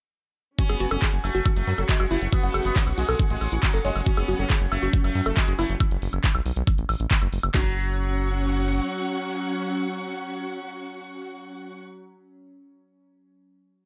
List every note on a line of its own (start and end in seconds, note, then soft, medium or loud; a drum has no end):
0.59 5.80 C#4 medium
0.59 0.80 C#4 loud
0.59 0.63 F#4 medium
0.59 kick loud
0.59 closed hi-hat medium
0.64 5.80 F#4 medium
0.69 0.76 F#1 medium
0.69 1.02 B3 medium
0.69 0.74 G#4 loud
0.69 closed hi-hat medium
0.69 high woodblock soft
0.80 0.86 F#1 loud
0.80 0.87 F#4 loud
0.80 open hi-hat loud
0.91 0.97 F#1 medium
0.91 1.12 C#4 loud
0.91 0.94 A4 medium
0.91 closed hi-hat medium
0.91 high woodblock medium
0.99 1.09 G#4 medium
0.99 5.80 C#6 medium
0.99 kick loud
0.99 clap loud
0.99 closed hi-hat medium
1.05 5.80 F#5 medium
1.13 1.19 F#1 medium
1.13 closed hi-hat medium
1.24 1.30 F#1 loud
1.24 1.45 A3 medium
1.24 open hi-hat loud
1.24 high woodblock soft
1.35 1.41 F#1 medium
1.35 1.39 F#4 loud
1.35 closed hi-hat medium
1.46 1.50 F#4 medium
1.46 kick loud
1.46 closed hi-hat medium
1.46 high woodblock medium
1.56 1.63 F#1 medium
1.56 1.78 A3 medium
1.56 closed hi-hat medium
1.67 1.73 F#2 loud
1.67 1.74 F#3 medium
1.67 open hi-hat loud
1.78 1.84 F#1 medium
1.78 1.85 F#3 medium
1.78 1.81 A4 medium
1.78 closed hi-hat medium
1.78 high woodblock soft
1.89 2.03 G#3 medium
1.89 1.93 F#4 medium
1.89 kick loud
1.89 clap loud
1.89 closed hi-hat medium
2.00 2.06 F#1 loud
2.00 2.06 F#4 medium
2.00 closed hi-hat medium
2.00 high woodblock medium
2.11 2.17 F#1 loud
2.11 2.25 A3 loud
2.11 2.17 E4 loud
2.11 open hi-hat loud
2.22 2.28 F#1 medium
2.22 closed hi-hat medium
2.33 2.54 B3 medium
2.33 2.37 F#4 medium
2.33 kick loud
2.33 closed hi-hat medium
2.33 high woodblock soft
2.43 2.50 F#1 medium
2.43 2.87 A3 medium
2.43 2.46 F#5 loud
2.43 closed hi-hat medium
2.54 2.60 F#1 loud
2.54 2.59 G#4 medium
2.54 open hi-hat loud
2.54 high woodblock medium
2.65 2.71 F#1 loud
2.65 2.86 B3 medium
2.65 closed hi-hat medium
2.76 kick loud
2.76 clap loud
2.76 closed hi-hat medium
2.87 2.93 B1 medium
2.87 closed hi-hat medium
2.87 high woodblock soft
2.98 3.04 B1 loud
2.98 3.19 G#3 medium
2.98 3.00 F#4 medium
2.98 open hi-hat loud
3.09 3.15 B1 medium
3.09 3.15 A4 loud
3.09 closed hi-hat medium
3.09 high woodblock medium
3.19 kick loud
3.19 closed hi-hat medium
3.30 3.37 A1 medium
3.30 3.52 G#3 medium
3.30 closed hi-hat medium
3.41 3.47 A1 loud
3.41 3.46 G#4 medium
3.41 open hi-hat loud
3.41 high woodblock soft
3.52 3.58 A1 medium
3.52 3.56 E4 medium
3.52 closed hi-hat medium
3.63 3.77 F#3 medium
3.63 kick loud
3.63 clap loud
3.63 closed hi-hat medium
3.63 high woodblock medium
3.74 3.80 F#1 loud
3.74 3.78 A4 loud
3.74 closed hi-hat medium
3.85 3.91 F#1 loud
3.85 3.99 G#3 medium
3.85 3.89 C#5 loud
3.85 open hi-hat loud
3.96 4.02 F#1 loud
3.96 closed hi-hat medium
3.96 high woodblock soft
4.06 5.85 F#3 medium
4.06 5.85 C#4 medium
4.06 4.28 C#4 loud
4.06 4.11 F#4 medium
4.06 kick loud
4.06 closed hi-hat medium
4.17 4.23 F#1 medium
4.17 4.38 B3 medium
4.17 4.22 G#4 loud
4.17 closed hi-hat medium
4.17 high woodblock medium
4.28 4.34 F#1 loud
4.28 4.35 F#4 loud
4.28 open hi-hat loud
4.39 4.45 F#1 medium
4.39 4.46 F#3 medium
4.39 4.60 C#4 medium
4.39 4.42 A4 medium
4.39 closed hi-hat medium
4.50 4.57 F#3 medium
4.50 4.56 G#4 medium
4.50 kick loud
4.50 clap loud
4.50 closed hi-hat medium
4.50 high woodblock soft
4.61 4.67 F#1 medium
4.61 closed hi-hat medium
4.72 4.78 F#1 loud
4.72 4.93 A3 loud
4.72 open hi-hat loud
4.72 high woodblock medium
4.83 4.89 F#1 medium
4.83 4.87 F#4 loud
4.83 closed hi-hat medium
4.93 4.98 F#4 medium
4.93 kick loud
4.93 closed hi-hat medium
5.04 5.10 F#1 medium
5.04 5.25 A3 medium
5.04 closed hi-hat medium
5.04 high woodblock soft
5.15 5.21 F#2 loud
5.15 open hi-hat loud
5.26 5.32 F#1 medium
5.26 5.41 A3 medium
5.26 5.29 A4 medium
5.26 closed hi-hat medium
5.26 high woodblock medium
5.37 5.51 G#3 medium
5.37 5.41 F#4 medium
5.37 kick loud
5.37 clap loud
5.37 closed hi-hat medium
5.48 5.54 F#1 loud
5.48 5.54 F#4 medium
5.48 closed hi-hat medium
5.59 5.65 F#1 loud
5.59 5.73 A3 loud
5.59 5.65 E4 loud
5.59 open hi-hat loud
5.59 high woodblock soft
5.70 5.76 F#1 loud
5.70 closed hi-hat medium
5.80 kick loud
5.80 closed hi-hat medium
5.80 high woodblock medium
5.91 5.97 F#1 medium
5.91 closed hi-hat medium
6.02 6.08 F#1 loud
6.02 open hi-hat loud
6.13 6.19 F#1 medium
6.13 closed hi-hat medium
6.13 high woodblock soft
6.24 kick loud
6.24 clap loud
6.24 closed hi-hat medium
6.35 6.41 B1 medium
6.35 closed hi-hat medium
6.35 high woodblock medium
6.46 6.52 B1 loud
6.46 open hi-hat loud
6.56 6.63 B1 loud
6.56 closed hi-hat medium
6.67 kick loud
6.67 closed hi-hat medium
6.67 high woodblock soft
6.78 6.84 A1 medium
6.78 closed hi-hat medium
6.89 6.95 A1 loud
6.89 open hi-hat loud
6.89 high woodblock medium
7.00 7.06 A1 medium
7.00 closed hi-hat medium
7.11 kick loud
7.11 clap loud
7.11 closed hi-hat medium
7.22 7.28 F#1 loud
7.22 closed hi-hat medium
7.22 high woodblock soft
7.33 7.39 F#1 loud
7.33 open hi-hat loud
7.43 7.50 F#1 medium
7.43 closed hi-hat medium
7.43 high woodblock medium
7.54 8.81 F#1 loud
7.54 12.14 F#3 medium
7.54 11.82 F#3 medium
7.54 11.78 C#4 medium
7.54 11.82 C#4 medium
7.54 7.75 F#4 medium
7.54 kick loud
7.54 snare loud
7.54 clap loud
7.61 11.78 F#4 medium
7.67 11.78 F#5 medium
7.74 11.78 C#6 medium